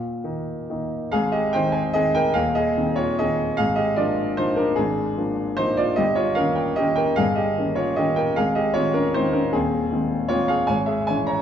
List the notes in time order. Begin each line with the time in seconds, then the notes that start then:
Already playing: A#2 G5
0.24 D#3 A#3 D#4
0.70 D#3 A#3 D#4
1.12 G#1 G#2 G#4 F5
1.32 G4 D#5
1.53 D#3 C4 D#4 C5 G5
1.72 C5 G#5
1.94 D#3 C4 D#4 G#4 D#5
2.15 A#4 G5
2.34 D#1 D#2 G#4 F5
2.55 G#4 D#5
2.77 D#3 C4 D#4
2.96 F4 C#5
3.19 D#3 C4 D#4 G#4 D#5
3.57 G#1 G#2 G#4 F5
3.76 G4 D#5
3.96 F3 A#3 D4 F4 D5
4.37 F3 A#3 D4 D#4 C5
4.56 D4 A#4
4.76 G#1 G#2 D4 G#4
5.17 F3 A#3 D4
5.57 F3 A#3 D4 D#4 C5
5.77 F4 D5
5.96 G1 G2 G4 D#5
6.15 F4 C#5
6.35 D#3 A#3 C#4 A#4 F5
6.55 A#4 G5
6.76 D#3 A#3 C#4 G4 D#5
6.96 A#4 G5
7.16 G1 G2 G#4 F5
7.35 G4 D#5
7.58 D#3 A#3 C#4
7.75 F4 C#5
7.96 D#3 A#3 C#4 G4 D#5
8.16 A#4 G5
8.36 G#1 G#2 G#4 F5
8.55 G4 D#5
8.74 D#3 G#3 C4 F4 C#5
8.94 C#4 A#4
9.14 D#3 G#3 C4 D#4 C5
9.33 C#4 A#4
9.53 D#1 D#2 C4 G#4
9.92 D#3 G#3 C4
10.29 D#3 G#3 C4 F4 C#5
10.48 G#4 F5
10.67 G#1 G#2 C#5 G#5
10.86 G#4 E5
11.07 E3 G#3 C#4 C#5 G#5
11.27 C#5 A#5